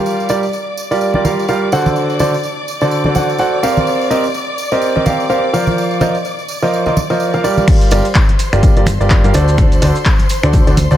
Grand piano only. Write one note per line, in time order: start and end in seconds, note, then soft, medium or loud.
0.00 0.27 G3 medium
0.00 0.27 F4 medium
0.00 0.27 G4 medium
0.00 0.27 A#4 medium
0.00 0.27 F5 loud
0.30 0.42 G3 medium
0.30 0.42 F4 medium
0.30 0.42 G4 medium
0.30 0.42 A#4 medium
0.30 0.42 D5 loud
0.91 1.11 G3 medium
0.91 1.12 F4 medium
0.91 1.12 G4 medium
0.91 1.11 A#4 medium
0.91 1.11 D5 medium
1.15 1.22 G3 medium
1.15 1.22 F4 medium
1.15 1.22 G4 medium
1.15 1.23 A#4 medium
1.15 1.22 D5 medium
1.25 1.43 G3 medium
1.25 1.43 F4 medium
1.25 1.43 G4 medium
1.25 1.43 A#4 medium
1.25 1.43 F5 medium
1.49 1.67 G3 medium
1.49 1.67 F4 medium
1.49 1.67 G4 medium
1.49 1.67 A#4 medium
1.49 1.67 F5 medium
1.73 2.18 D3 medium
1.73 2.18 F#4 medium
1.73 2.18 A4 medium
1.73 2.18 C5 medium
1.73 2.18 F#5 loud
2.20 2.33 D3 medium
2.20 2.33 F#4 medium
2.20 2.33 A4 medium
2.20 2.33 C5 medium
2.20 2.33 D5 loud
2.82 3.02 D3 medium
2.82 3.02 F#4 medium
2.82 3.02 A4 medium
2.82 3.02 C5 medium
2.82 3.02 D5 medium
3.05 3.13 D3 medium
3.05 3.13 F#4 medium
3.05 3.13 A4 medium
3.05 3.13 C5 medium
3.05 3.13 D5 medium
3.15 3.34 D3 medium
3.15 3.34 F#4 medium
3.15 3.34 A4 medium
3.15 3.34 C5 medium
3.15 3.34 F#5 medium
3.39 3.58 F#4 medium
3.39 3.58 A4 medium
3.39 3.58 C5 medium
3.39 3.58 F#5 medium
3.63 4.08 C4 medium
3.63 4.08 G4 medium
3.63 4.08 A#4 medium
3.63 4.08 C5 medium
3.63 4.08 F5 loud
4.11 4.23 C4 loud
4.11 4.23 G4 medium
4.11 4.23 A#4 medium
4.11 4.23 C5 medium
4.11 4.23 D#5 loud
4.72 4.92 C4 medium
4.72 4.92 G4 medium
4.72 4.92 A#4 medium
4.72 4.92 C5 medium
4.72 4.92 D#5 medium
4.96 5.03 C4 medium
4.96 5.03 G4 medium
4.96 5.03 A#4 medium
4.96 5.03 C5 medium
4.96 5.03 D#5 medium
5.06 5.24 C4 medium
5.06 5.24 G4 medium
5.06 5.24 A#4 medium
5.06 5.24 C5 medium
5.06 5.24 F5 medium
5.30 5.48 C4 medium
5.30 5.48 G4 medium
5.30 5.48 A#4 medium
5.30 5.48 C5 medium
5.30 5.48 F5 medium
5.53 5.99 F3 medium
5.53 5.99 F4 medium
5.53 5.99 A#4 medium
5.53 5.99 C5 medium
5.53 5.99 F5 loud
6.01 6.14 F3 medium
6.01 6.14 F4 medium
6.01 6.14 A#4 medium
6.01 6.14 C5 medium
6.01 6.14 D#5 loud
6.62 6.83 F3 medium
6.62 6.83 F4 medium
6.62 6.83 A#4 medium
6.62 6.83 C5 medium
6.62 6.83 D#5 medium
6.86 6.94 F3 medium
6.86 6.94 F4 medium
6.86 6.94 A#4 medium
6.86 6.94 C5 medium
6.86 6.94 D#5 medium
7.10 7.31 F3 medium
7.10 7.31 F4 medium
7.10 7.31 A#4 medium
7.10 7.31 C5 medium
7.10 7.31 D#5 medium
7.34 7.42 F3 medium
7.34 7.42 F4 medium
7.34 7.42 A#4 medium
7.34 7.42 C5 medium
7.34 7.42 F5 medium
7.44 7.89 G3 loud
7.44 7.89 F4 medium
7.44 7.89 G4 medium
7.44 7.89 A#4 medium
7.44 7.89 D5 loud
7.92 8.04 G3 loud
7.92 8.04 F4 medium
7.92 8.04 G4 medium
7.92 8.04 A#4 medium
7.92 8.04 D5 loud
8.53 8.73 G3 medium
8.53 8.73 F4 medium
8.53 8.73 G4 medium
8.53 8.73 A#4 medium
8.53 8.73 D5 medium
8.77 8.84 G3 medium
8.77 8.84 F4 medium
8.77 8.84 G4 medium
8.77 8.84 A#4 medium
8.77 8.84 D5 medium
9.01 9.21 G3 medium
9.01 9.21 F4 medium
9.01 9.21 G4 medium
9.01 9.21 A#4 medium
9.01 9.21 D5 medium
9.24 9.32 G3 medium
9.24 9.32 F4 medium
9.24 9.32 G4 medium
9.24 9.32 A#4 medium
9.24 9.32 F5 medium
9.34 9.80 D3 loud
9.34 9.80 F#4 medium
9.34 9.80 A4 medium
9.34 9.80 C5 medium
9.34 9.80 D5 loud
9.82 9.95 D3 loud
9.82 9.95 F#4 medium
9.82 9.95 A4 medium
9.82 9.95 C5 medium
9.82 9.95 D5 loud
10.43 10.64 D3 medium
10.43 10.64 F#4 medium
10.43 10.64 A4 medium
10.43 10.64 C5 medium
10.43 10.64 D5 medium
10.67 10.75 D3 medium
10.67 10.75 F#4 medium
10.67 10.75 A4 medium
10.67 10.75 C5 medium
10.67 10.75 D5 medium
10.91 10.97 D3 medium
10.91 10.97 F#4 medium
10.91 10.97 A4 medium
10.91 10.97 C5 medium
10.91 10.97 D5 medium